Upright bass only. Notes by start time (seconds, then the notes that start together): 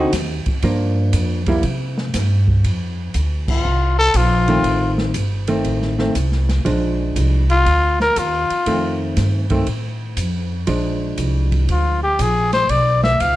Already playing: D2
0.13 D#2
0.46 muted upright bass stroke
0.63 G2
1.13 F2
1.63 C3
2.14 G2
2.64 F2
3.15 D2
3.65 C2
4.14 A#1
4.64 A1
5.14 G1
5.65 A1
6.15 C2
6.65 A#1
7.16 C2
7.66 D2
8.16 D#2
8.50 muted upright bass stroke
8.66 F2
9.17 G2
9.67 A2
10.17 F2
10.68 A#1
11.18 C2
11.69 D2
12.19 A#1
12.69 B1
13.20 C#2